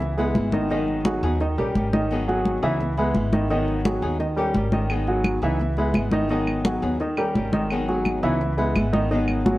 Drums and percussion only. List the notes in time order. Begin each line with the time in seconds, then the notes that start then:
0.00 high conga
0.18 high conga
0.35 high conga
0.52 high conga
0.70 high conga
0.88 high conga
1.05 high conga
1.23 high conga
1.40 high conga
1.58 high conga
1.75 high conga
1.93 high conga
2.11 high conga
2.29 high conga
2.46 high conga
2.63 high conga
2.81 high conga
2.97 high conga
3.15 high conga
3.33 high conga
3.50 high conga
3.68 high conga
3.85 high conga
4.03 high conga
4.20 high conga
4.37 high conga
4.54 high conga
4.72 high conga
4.90 high conga, claves
5.07 high conga
5.24 high conga, claves
5.42 high conga
5.59 high conga
5.77 high conga
5.94 high conga, claves
6.11 high conga
6.29 high conga
6.47 high conga, claves
6.65 high conga
6.82 high conga
7.00 high conga
7.17 high conga, claves
7.35 high conga
7.53 high conga
7.70 high conga, claves
7.89 high conga
8.05 high conga, claves
8.23 high conga
8.41 high conga
8.58 high conga
8.76 high conga, claves
8.94 high conga
9.11 high conga
9.28 high conga, claves
9.46 high conga